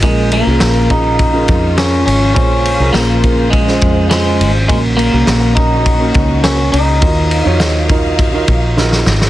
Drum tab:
RD |x-x-x-x-x-x-x-x-|x-x-x-x-x-x-x-x-|x-x-x-x-x-x-x-x-|x-x-x-x-x-x-----|
HH |p---------------|----------------|----------------|----------------|
SD |----o-------o---|----o----o--o---|----o-------o---|----o-------oooo|
BD |o-----o-o-o-----|o-----o-o-o-----|o-----o-o-o-----|o-----o-o-o-----|